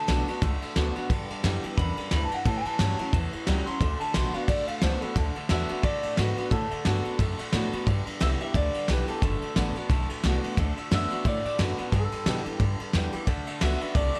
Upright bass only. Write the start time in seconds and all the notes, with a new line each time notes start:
0.08 B1
0.42 C#2
0.76 D2
0.96 muted upright bass stroke
1.10 G2
1.30 muted upright bass stroke
1.44 F#2
1.64 muted upright bass stroke
1.78 E2
1.98 muted upright bass stroke
2.12 D2
2.46 A2
2.65 muted upright bass stroke
2.80 G2
2.99 muted upright bass stroke
3.13 E2
3.34 muted upright bass stroke
3.48 C#2
3.67 muted upright bass stroke
3.81 D2
4.16 A#1
4.35 muted upright bass stroke
4.48 A1
4.68 muted upright bass stroke
4.83 C#2
5.02 muted upright bass stroke
5.16 D2
5.36 muted upright bass stroke
5.50 E2
5.71 muted upright bass stroke
5.84 F#2
6.05 muted upright bass stroke
6.18 G#2
6.38 muted upright bass stroke
6.51 A2
6.72 muted upright bass stroke
6.86 G2
7.06 muted upright bass stroke
7.19 F#2
7.40 muted upright bass stroke
7.53 A2
7.73 muted upright bass stroke
7.87 G2
8.07 muted upright bass stroke
8.22 C2
8.54 D2
8.89 B1
9.08 muted upright bass stroke
9.22 F#1
9.42 muted upright bass stroke
9.56 A1
9.76 muted upright bass stroke
9.90 B1
10.24 C2
10.57 D2
10.91 F#2
11.11 muted upright bass stroke
11.25 A2
11.45 muted upright bass stroke
11.59 F#2
11.79 muted upright bass stroke
11.93 G2
12.13 muted upright bass stroke
12.27 B2
12.46 muted upright bass stroke
12.60 G2
12.80 muted upright bass stroke
12.94 E2
13.14 muted upright bass stroke
13.27 D2
13.48 muted upright bass stroke
13.62 C#2
13.95 C2
14.15 muted upright bass stroke